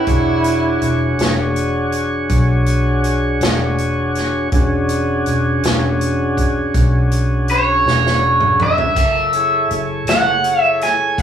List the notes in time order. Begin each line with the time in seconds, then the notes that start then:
Already playing: E4
0.07 E1 D4 F#4 G#4 C#5, kick, closed hi-hat
0.44 closed hi-hat
0.82 E1, closed hi-hat
1.19 E1, snare, closed hi-hat
1.56 closed hi-hat
1.92 closed hi-hat
2.29 B1, kick, closed hi-hat
2.66 closed hi-hat
3.04 closed hi-hat
3.41 E1, snare, closed hi-hat
3.78 closed hi-hat
4.15 snare, closed hi-hat
4.52 E1 C#4 D4 F#4 G#4, kick, closed hi-hat
4.89 closed hi-hat
5.26 E1, closed hi-hat
5.63 E1, snare, closed hi-hat
6.01 closed hi-hat
6.37 kick, closed hi-hat
6.74 B1, kick, closed hi-hat
7.12 closed hi-hat
7.48 C#5, closed hi-hat
7.86 E1, snare
8.06 snare
8.40 mid tom
8.60 E5, mid tom
8.78 floor tom
8.96 F#1 F4 A4 A#4 D5, kick, closed hi-hat, splash
9.33 E4 G#4 A4 C#5, closed hi-hat
9.71 F#1, closed hi-hat
10.07 F#1 F#5, snare, closed hi-hat
10.44 closed hi-hat
10.60 E5
10.81 G#5, snare, closed hi-hat
11.18 C#2, kick, closed hi-hat